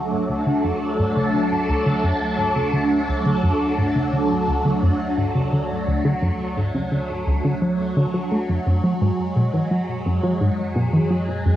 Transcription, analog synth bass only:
0.29 0.43 D2 medium
0.46 0.56 D3 loud
0.64 0.74 F#2 medium
0.99 1.13 G#2 medium
1.16 1.31 C#3 medium
1.34 1.43 D3 medium
1.69 1.83 D2 medium
1.86 1.96 D3 loud
2.03 2.13 F#2 medium
2.38 2.53 G#2 medium
2.56 2.70 C#3 medium
2.73 2.83 D3 medium
3.08 3.23 D2 medium
3.25 3.35 D3 loud
3.43 3.53 F#2 medium
3.78 3.92 G#2 medium
3.95 4.10 C#3 medium
4.13 4.22 D3 medium
4.48 4.62 D2 medium
4.65 4.75 D3 loud
4.82 4.92 F#2 loud
5.17 5.32 G#2 medium
5.35 5.49 C#3 medium
5.52 5.62 D3 medium
5.87 6.02 D2 medium
6.05 6.14 D3 loud
6.22 6.32 F#2 medium
6.57 6.71 G#2 medium
6.75 6.89 C#3 medium
6.92 7.01 D3 medium
7.27 7.41 D2 medium
7.44 7.54 D3 loud
7.62 7.76 F#3 loud
7.97 8.06 D3 medium
8.14 8.24 F#3 medium
8.32 8.46 A3 medium
8.49 8.59 F#2 medium
8.66 8.81 F#2 medium
8.84 8.93 F#3 loud
9.01 9.11 G#2 medium
9.36 9.51 B2 medium
9.54 9.68 E3 medium
9.71 9.81 F#3 medium
10.06 10.20 F#2 medium
10.24 10.33 F#3 loud
10.41 10.50 G#2 loud
10.76 10.90 B2 medium
10.93 11.08 E3 medium
11.10 11.20 F#3 medium
11.45 11.56 F#2 medium

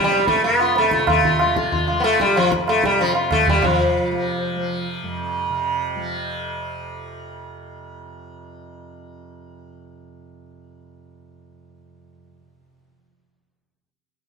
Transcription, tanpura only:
0.00 0.48 F2 medium
0.00 0.95 C3 medium
0.00 1.45 F3 medium
0.49 2.38 F2 medium
0.96 2.85 C3 medium
1.45 1.92 F3 medium
1.92 3.33 F3 medium
2.38 5.03 F2 medium
2.85 3.63 C3 medium
3.33 4.11 F3 medium
3.63 5.49 C3 medium
4.11 4.55 F3 medium
4.55 5.95 F3 medium
5.03 12.18 F2 medium
5.49 12.64 C3 medium
5.95 12.96 F3 medium

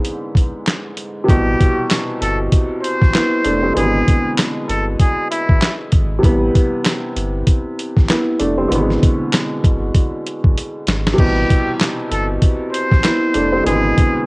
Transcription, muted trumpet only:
1.28 1.86 G4 loud
2.22 2.38 A4 medium
2.82 3.72 C5 medium
3.76 4.34 G#4 loud
4.69 4.85 A4 medium
5.00 5.28 G#4 medium
5.30 5.77 E4 medium
11.18 11.76 G4 loud
12.11 12.28 A4 medium
12.72 13.61 C5 medium
13.66 14.24 G#4 loud

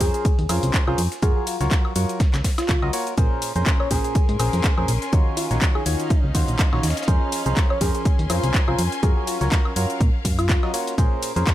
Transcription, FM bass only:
0.01 0.10 F2 medium
0.39 0.46 D#2 loud
0.49 0.59 F2 loud
0.63 0.71 C2 loud
0.88 0.95 C2 loud
0.98 1.08 F2 loud
1.23 1.32 F#2 loud
1.61 1.68 C#2 medium
1.96 2.06 F#2 medium
2.34 2.42 C#2 loud
2.69 2.79 C#2 medium
2.83 2.90 C#2 loud
3.18 3.27 A#1 loud
3.56 3.63 F2 medium
3.91 4.01 A#1 medium
4.29 4.37 G#2 loud
4.40 4.49 A#1 loud
4.53 4.61 F2 loud
4.78 4.85 F2 medium
4.88 4.98 A#1 loud
5.13 5.23 D#2 loud
5.51 5.59 A#1 medium
5.86 5.96 D#2 medium
6.24 6.32 C#2 loud
6.35 6.45 D#2 loud
6.48 6.56 A#1 loud
6.73 6.81 A#1 loud
6.83 6.93 D#2 loud
7.08 7.18 F2 loud
7.46 7.54 C2 medium
7.81 7.91 F2 medium
8.19 8.27 D#2 loud
8.30 8.40 F2 loud
8.44 8.51 C2 loud
8.68 8.76 C2 medium
8.79 8.89 F2 loud
9.03 9.13 F#2 loud
9.41 9.49 C#2 medium
9.76 9.86 F#2 medium
10.01 10.10 A#2 medium
10.25 10.57 F#2 loud
10.98 11.08 A#1 loud
11.36 11.44 F2 medium

